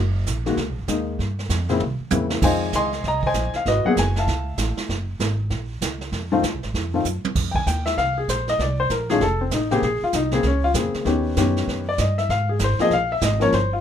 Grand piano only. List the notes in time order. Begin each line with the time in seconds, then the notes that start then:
0.46 D#3 G#3 A#3 F#4
0.88 D#3 G#3 A#3 D#4
1.69 C#3 A#3 C4 E4
2.11 C#3 A#3 C4 E4
2.42 D#3 G#3 C4 F4 C5 D#5 G#5
2.76 D#5 G#5 C6
3.07 D#5 A#5
3.26 C5 D#5 G#5
3.56 F5
3.67 F#4 B4 D#5
3.85 F#3 A#3 B3 G#4 F#5
3.99 G#5
4.18 E5 F5 A5
6.32 D#3 A3 C4 F4
6.94 D#3 A3 C4 F4
7.51 G5
7.56 G#5
7.67 G5
7.86 E5
7.98 F5
8.18 G#4
8.30 C5
8.49 D#5
8.62 D5
8.80 C5
8.91 A#4
9.10 D#3 A3 C#4 F4 G#4
9.22 A4
9.41 C4
9.53 D#4
9.71 C#3 A#3 C4 G4 G#4
9.84 G#4
10.04 F4
10.15 D#4
10.32 C#3 A#3 C4 G#4
10.46 C#4
10.64 F4
10.75 C#3 A#3 C4 G#4
11.05 D#3 B3 C#4 G4
11.37 D#3 B3 C#4 G4
11.89 D5
12.00 D#5
12.18 E5
12.30 F5
12.49 G#4
12.64 C5
12.80 F3 A#3 C4 G#4 D#5
12.93 F5
13.12 E5
13.24 D#5
13.40 F3 A#3 C#4 A#4 C#5
13.54 C5
13.73 F4